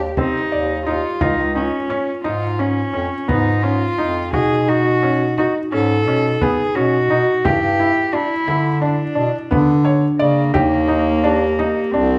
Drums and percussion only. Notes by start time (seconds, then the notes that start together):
0.17 frame drum
1.21 frame drum
1.90 frame drum
2.25 frame drum
2.60 frame drum
2.94 frame drum
3.29 frame drum
3.99 frame drum
4.33 frame drum
5.38 frame drum
6.41 frame drum
7.45 frame drum
8.48 frame drum
9.52 frame drum
10.55 frame drum
11.59 frame drum